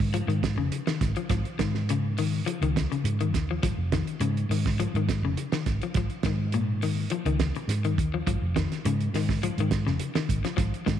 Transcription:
Already playing: G#2
0.00 kick
0.14 F3, closed hi-hat
0.27 G#2 D#3, closed hi-hat
0.43 kick, snare, closed hi-hat
0.56 F1 C#3
0.72 closed hi-hat
0.86 D#3, muted fingered electric bass stroke, snare, closed hi-hat
1.01 G#1, kick, snare, closed hi-hat
1.16 F3, closed hi-hat
1.30 G#1 F3, kick, snare, closed hi-hat
1.45 closed hi-hat
1.59 G#2 D#3, kick, snare, closed hi-hat
1.75 snare
1.89 C#3, closed hi-hat
2.18 D#3, open hi-hat
2.46 F3, closed hi-hat
2.61 C#2 D#3, closed hi-hat
2.76 kick, snare, closed hi-hat
2.92 C#3, closed hi-hat
3.04 G#2, closed hi-hat
3.21 D#3, closed hi-hat
3.34 D#2, kick, snare, closed hi-hat
3.51 F3
3.63 G#1 F3, kick, snare, closed hi-hat
3.77 F1
3.92 D#3, kick, snare, closed hi-hat
4.07 closed hi-hat
4.20 G#2 C#3, closed hi-hat
4.37 closed hi-hat
4.49 G#2 D#3, open hi-hat
4.66 kick, snare
4.80 F3, closed hi-hat
4.94 G#2 D#3, closed hi-hat
5.09 kick, snare, closed hi-hat
5.22 F1 C#3
5.37 closed hi-hat
5.52 D#3, muted fingered electric bass stroke, snare, closed hi-hat
5.66 G#1, kick, snare, closed hi-hat
5.81 F3, closed hi-hat
5.94 G#1 F3, kick, snare, closed hi-hat
6.10 closed hi-hat
6.23 G#2 D#3, kick, snare, closed hi-hat
6.52 A#2, closed hi-hat
6.82 D#3, open hi-hat
7.10 F3, closed hi-hat
7.25 C#2 D#3, closed hi-hat
7.40 kick, snare, closed hi-hat
7.55 muted clean electric guitar stroke, closed hi-hat
7.68 G#2, snare, closed hi-hat
7.84 D#3, closed hi-hat
7.98 D#2, kick, closed hi-hat
8.14 F3
8.27 G#1 F3, kick, closed hi-hat
8.42 F1
8.56 D#3, kick, snare, closed hi-hat
8.72 snare, closed hi-hat
8.85 G#2 C#3, closed hi-hat
9.01 closed hi-hat
9.13 G#2 D#3, snare, open hi-hat
9.29 kick, snare
9.43 F3, closed hi-hat
9.58 G#2 D#3, closed hi-hat
9.71 kick, snare, closed hi-hat
9.87 F1 C#3, snare
10.00 closed hi-hat
10.15 D#3, muted fingered electric bass stroke, snare, closed hi-hat
10.29 G#1, kick, closed hi-hat
10.45 F3, snare, closed hi-hat
10.57 G#1 F3, kick, snare, closed hi-hat
10.74 closed hi-hat
10.86 G#2 D#3, kick, snare, closed hi-hat

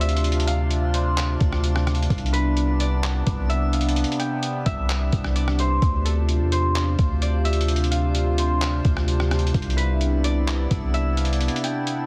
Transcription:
Already playing: D2 C3 D4 F4 A4 C5 D5
0.01 E5, closed hi-hat
0.09 closed hi-hat
0.17 closed hi-hat
0.24 D5, closed hi-hat
0.32 closed hi-hat
0.40 closed hi-hat
0.47 F5, closed hi-hat
0.71 closed hi-hat
0.94 C5, closed hi-hat
1.17 clap, closed hi-hat
1.41 D2, kick, closed hi-hat
1.52 cross-stick
1.64 closed hi-hat
1.76 cross-stick
1.87 cross-stick, closed hi-hat
1.95 closed hi-hat
2.03 closed hi-hat
2.10 C2 C3 B3 D5, kick, closed hi-hat
2.18 closed hi-hat
2.26 closed hi-hat
2.33 B4, closed hi-hat
2.57 closed hi-hat
2.80 D5, closed hi-hat
3.03 clap, closed hi-hat
3.27 C2, kick, closed hi-hat
3.49 E5, closed hi-hat
3.73 F5, closed hi-hat
3.81 closed hi-hat
3.89 closed hi-hat
3.96 E5, closed hi-hat
4.04 closed hi-hat
4.12 closed hi-hat
4.20 G5, closed hi-hat
4.43 closed hi-hat
4.66 C2 E5, kick, closed hi-hat
4.89 clap, closed hi-hat
5.13 C2, kick, closed hi-hat
5.24 cross-stick
5.36 D5, closed hi-hat
5.48 cross-stick
5.59 C5, closed hi-hat
5.82 D2 F4 C5, kick, closed hi-hat
6.05 A4, closed hi-hat
6.29 closed hi-hat
6.40 E2
6.52 C5, closed hi-hat
6.75 clap, closed hi-hat
6.99 D2, kick, closed hi-hat
7.22 D5, closed hi-hat
7.45 E5, closed hi-hat
7.53 closed hi-hat
7.61 closed hi-hat
7.68 closed hi-hat
7.76 closed hi-hat
7.84 closed hi-hat
7.91 F5, closed hi-hat
8.15 closed hi-hat
8.38 C5, closed hi-hat
8.61 clap, closed hi-hat
8.85 D2, kick, closed hi-hat
8.97 cross-stick
9.08 closed hi-hat
9.20 cross-stick
9.31 cross-stick, closed hi-hat
9.39 closed hi-hat
9.47 closed hi-hat
9.54 C2 B3 D4 E4 D5, kick, closed hi-hat
9.62 closed hi-hat
9.70 closed hi-hat
9.77 B4, closed hi-hat
10.01 closed hi-hat
10.24 D5, closed hi-hat
10.48 clap, closed hi-hat
10.71 C2, kick, closed hi-hat
10.94 E5, closed hi-hat
11.17 F5, closed hi-hat
11.25 closed hi-hat
11.33 closed hi-hat
11.41 closed hi-hat
11.48 closed hi-hat
11.56 closed hi-hat
11.64 G5, closed hi-hat
11.87 closed hi-hat

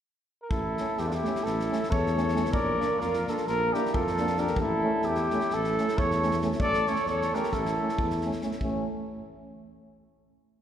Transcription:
0.42 A#4
0.50 A1 E4 A4, kick
0.77 A3 C#4, snare
0.97 E2 E4 G4, snare
1.07 D4 F4
1.11 E4 G4, snare
1.22 A3 C#4, snare
1.35 snare
1.43 A1 E4 A4, snare
1.60 snare
1.71 A3 C#4, snare
1.84 snare
1.90 E2 A4 C#5, kick
2.06 snare
2.15 A3 C#4, snare
2.28 snare
2.34 A3 C#4, snare
2.45 snare
2.52 A#1 A#4 D5, kick
2.79 A#3 D4, snare
2.99 F2 F4 A#4, snare
3.14 snare
3.27 A#3 D4 F4 A4, snare
3.37 snare
3.46 A#1 F4 A#4, snare
3.73 A#3 D4 E4 G4, snare
3.86 snare
3.94 F2 F4 A4, kick
4.07 snare
4.17 A#3 D4, snare
4.27 snare
4.37 A#3 D4 G4 A#4, snare
4.47 snare
4.56 A1 E4 A4, kick
4.83 A3 C#4
5.02 E2 G4, snare
5.08 E4
5.15 snare
5.30 A3 C#4, snare
5.40 snare
5.50 A1 A4, snare
5.55 E4
5.64 snare
5.78 A3 C#4, snare
5.88 snare
5.98 E2 A4 C#5, kick
6.11 snare
6.23 A3 C#4, snare
6.31 snare
6.42 A3 C#4, snare
6.52 snare
6.59 A1 A4 D5, kick
6.73 snare
6.87 A3 C#4 A4 C#5, snare
6.96 snare
7.05 E2 A4 C#5, snare
7.22 snare
7.33 A3 C#4 G4 A#4, snare
7.43 snare
7.51 A1 E4 A4, kick, snare
7.66 snare
7.80 A3 C#4
7.89 snare
7.98 E2, kick
8.10 snare
8.21 A3 C#4, snare
8.32 snare
8.42 A3 C#4, snare
8.52 snare
8.59 A1 A3 C#4, kick

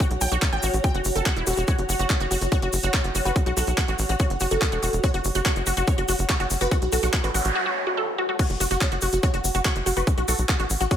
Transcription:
Already playing: F#4 C#5 F#5
0.00 F#4, kick, closed hi-hat, shaker
0.11 B1, closed hi-hat
0.21 B1 G5, open hi-hat, shaker
0.32 B1 F#4, closed hi-hat, shaker
0.42 kick, clap, closed hi-hat, shaker
0.53 A1 G5, closed hi-hat
0.62 A1 F#4, open hi-hat, shaker
0.73 A1, closed hi-hat, shaker
0.84 G5, kick, closed hi-hat, shaker
0.94 F#1 F#4, closed hi-hat
1.04 F#1, open hi-hat, shaker
1.15 F#1 A4, closed hi-hat, shaker
1.26 F#4, kick, clap, closed hi-hat, shaker
1.36 E1 E4, closed hi-hat
1.47 E1 F#4, open hi-hat, shaker
1.57 E1 F#4, closed hi-hat, shaker
1.68 F#4 C#5, kick, closed hi-hat, shaker
1.78 F#1 F#4, closed hi-hat
1.89 F#1 F#4, open hi-hat, shaker
1.99 F#1 F#4, closed hi-hat, shaker
2.10 C#5, kick, clap, closed hi-hat, shaker
2.20 F#1 F#4, closed hi-hat
2.31 F#1 F#4, open hi-hat, shaker
2.41 F#1 F#4, closed hi-hat, shaker
2.52 F#4 C#5, kick, closed hi-hat, shaker
2.62 F#1 F#4, closed hi-hat
2.73 F#1 F#4, open hi-hat, shaker
2.83 F#1 F#4, closed hi-hat, shaker
2.93 F#4 C#5, kick, clap, closed hi-hat, shaker
3.04 F#1 F#4, closed hi-hat
3.15 F#1 F#4, open hi-hat, shaker
3.25 F#1 F#4 B4, closed hi-hat, shaker
3.36 F#4, kick, closed hi-hat, shaker
3.46 B1 F#4, closed hi-hat
3.57 B1 F#4 A4, open hi-hat, shaker
3.67 B1 F#4, closed hi-hat, shaker
3.78 F#4, kick, clap, closed hi-hat, shaker
3.88 A1 F#4, closed hi-hat
3.99 A1 F#4, open hi-hat, shaker
4.09 A1 F#4, closed hi-hat, shaker
4.19 F#4 C#5, kick, closed hi-hat, shaker
4.30 F#1 F#4, closed hi-hat
4.40 F#1 F#4, open hi-hat, shaker
4.51 F#1 F#4 A4, closed hi-hat, shaker
4.62 kick, clap, closed hi-hat, shaker
4.72 E1 F#4, closed hi-hat
4.83 E1 F#4, open hi-hat, shaker
4.93 E1, closed hi-hat, shaker
5.03 F#4 C#5, kick, closed hi-hat, shaker
5.14 F#1 F#4, closed hi-hat
5.24 F#1 F#4, open hi-hat, shaker
5.35 F#1 F#4, closed hi-hat, shaker
5.46 F#4 C#5, kick, clap, closed hi-hat, shaker
5.56 F#1 F#4, closed hi-hat
5.66 F#1 F#4, open hi-hat, shaker
5.77 F#1 F#4, closed hi-hat, shaker
5.87 C#5, kick, closed hi-hat, shaker
5.98 F#1 F#4, closed hi-hat
6.08 F#1 F#4, open hi-hat, shaker
6.19 F#1 F#4, closed hi-hat, shaker
6.29 F#4 C#5, kick, clap, closed hi-hat, shaker
6.40 F#1 F#4, closed hi-hat
6.50 F#1 F#4, open hi-hat, shaker
6.61 F#1 F#4 B4, closed hi-hat, shaker
6.71 F#4, kick, closed hi-hat, noise sweep, shaker
6.82 B1 F#4, closed hi-hat
6.92 B1 F#4 A4, open hi-hat, shaker
7.03 B1 F#4, closed hi-hat, shaker
7.13 F#4, kick, clap, closed hi-hat, shaker
7.24 A1 F#4 B4, closed hi-hat
7.34 A1 F#4, open hi-hat, shaker
7.44 A1 F#4, closed hi-hat, shaker
7.55 F#4
7.66 F#4
7.87 F#4
7.97 A4
8.18 F#4
8.29 F#4
8.39 F#4 C#5, kick, closed hi-hat, crash, shaker
8.50 F#1 F#4, closed hi-hat
8.60 F#1 F#4, open hi-hat, shaker
8.71 F#1 F#4, closed hi-hat, shaker
8.81 C#5, kick, clap, closed hi-hat, shaker
8.92 F#1 F#4, closed hi-hat
9.01 F#1 F#4, open hi-hat, shaker
9.12 F#1 F#4, closed hi-hat, shaker
9.23 F#4 C#5, kick, closed hi-hat, shaker
9.34 F#1 F#4, closed hi-hat
9.44 F#1 F#4, open hi-hat, shaker
9.54 F#1 F#4, closed hi-hat, shaker
9.65 F#4 C#5, kick, clap, closed hi-hat, shaker
9.76 F#1 F#4, closed hi-hat
9.86 F#1 F#4, open hi-hat, shaker
9.97 F#1 F#4 B4, closed hi-hat, shaker
10.07 F#4, kick, closed hi-hat, shaker
10.18 B1 F#4, closed hi-hat
10.28 B1 F#4 A4, open hi-hat, shaker
10.38 B1 F#4, closed hi-hat, shaker
10.49 F#4, kick, clap, closed hi-hat, shaker
10.60 A1 F#4, closed hi-hat
10.70 A1 F#4, open hi-hat, shaker
10.80 A1 F#4, closed hi-hat, shaker
10.91 F#4 C#5, kick, closed hi-hat, shaker

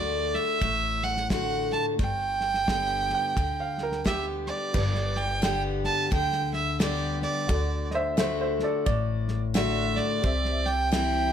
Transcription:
Already playing: D2 D3 A3 D4 F#4 D5
0.34 E5, snare
0.62 A1 A2, kick, snare
1.03 F#5, snare
1.17 snare
1.30 D3 A3 D4 F#4 F#5, kick, snare, hi-hat pedal
1.72 A5, snare
1.99 G1 G2 G5, kick, snare
2.41 snare
2.54 snare
2.68 D3 G3 B3 G4, kick, snare, hi-hat pedal
3.09 snare
3.14 G5
3.36 D2 D3, kick, snare
3.60 F5
3.78 snare
3.83 A#4
3.92 snare
4.04 D3 G3 B3 G4 E5, kick, snare, hi-hat pedal
4.47 D5, snare
4.73 G1 G2 G4 B4 D5, kick, snare, crash
4.95 snare
5.16 G5, snare
5.42 D3 G3 B3 G4 G5, snare, hi-hat pedal
5.84 A5, snare
6.12 D2 D3 G5, kick, snare
6.32 snare
6.53 E5, snare
6.80 D3 G3 B3 G4 D5, snare, hi-hat pedal
7.22 D5, snare
7.48 D2 D3 F#4 A4 D5, kick, snare
7.91 C5 D#5, snare
7.95 E5
8.17 D3 A3 D4 F#4 C5 E5, snare, hi-hat pedal
8.41 C5 E5
8.60 A4, snare
8.64 D5
8.86 A1 A2 D5, kick, snare
9.28 snare
9.54 D3 A3 D4 F#4 A4 D5 E5, snare, hi-hat pedal
9.97 D5, snare
10.22 C2 C3 G4 C5 E5, kick, snare
10.45 snare
10.66 G5, snare
10.92 E3 G3 C4 E4 G5, snare, hi-hat pedal

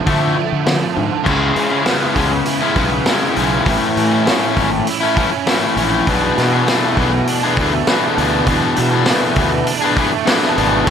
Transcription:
Already playing: D3 F3 A3
0.06 D3 F3 A3 E4, kick, open hi-hat
0.36 D3 F3 A3
0.52 D3
0.66 D3 F3, snare, open hi-hat
0.96 G#2 D3 F3
1.24 C#2 C#3 G#3 C#4 E4, kick, crash
1.56 C#3, open hi-hat
1.70 G#3 C#4 E4
1.86 C#3 G#3 B3 C#4 E4, snare, open hi-hat
2.16 C#2 C#3 G#3 C#4 E4, kick, open hi-hat
2.31 muted overdriven electric guitar stroke
2.46 E4, open hi-hat
2.61 G#3 C#4 E4
2.76 B1 C#3 G#3 B3 C#4 E4, kick, open hi-hat
2.92 muted overdriven electric guitar stroke
3.05 C#3 G#3 C#4, snare, open hi-hat
3.10 E4
3.36 B1 C#3 G#3 C#4 E4, open hi-hat
3.66 A1 A2 E3 A3 C#4 E4, kick, open hi-hat
3.97 A2 E3, open hi-hat
4.10 A3 C#4 E4
4.26 A2 E3 A3 C#4 E4, snare, open hi-hat
4.55 G#1 E3 A3 C#4 E4, kick, open hi-hat
4.71 muted overdriven electric guitar stroke
4.87 E4, open hi-hat
5.00 A3 C#4 E4
5.16 E3 A3 C#4 E4, kick, open hi-hat
5.32 muted overdriven electric guitar stroke
5.47 A2 E3 A3 C#4 E4, snare, open hi-hat
5.77 A#1 E3 A3 C#4 E4, open hi-hat
6.07 B1 B2 E3 B3 D4 G#4, kick, open hi-hat
6.38 B2, snare, open hi-hat
6.52 B3 D4 G#4
6.68 B2 E3 A3 B3 D4 G#4, snare, open hi-hat
6.97 B1 E3 B3 D4 G#4, kick, open hi-hat
7.13 muted overdriven electric guitar stroke
7.27 D4, open hi-hat
7.43 B3 D4 G#4
7.57 D2 E3 A3 B3 D4 G#4, kick, open hi-hat
7.74 muted overdriven electric guitar stroke
7.87 B2 E3 B3 D4 G#4, snare, open hi-hat
8.17 D2 B2 E3 B3 D4 G#4, open hi-hat
8.47 D2 B2 E3 B3 D4 G#4, kick, open hi-hat
8.76 B2, open hi-hat
8.91 B3 D4 G#4
9.06 B2 E3 A3 B3 D4, snare, open hi-hat
9.10 G#4
9.36 D2 E3 B3 D4 G#4, kick, open hi-hat
9.52 muted overdriven electric guitar stroke
9.67 D4, open hi-hat
9.82 B3 D4 G#4
9.97 E3 A3 B3 D4 G#4, kick, open hi-hat
10.12 muted overdriven electric guitar stroke
10.25 B2 E3 B3 D4 G#4, snare, open hi-hat
10.42 snare
10.56 G#1 B2 E3 B3 D4 G#4, open hi-hat
10.87 A1 A2, crash

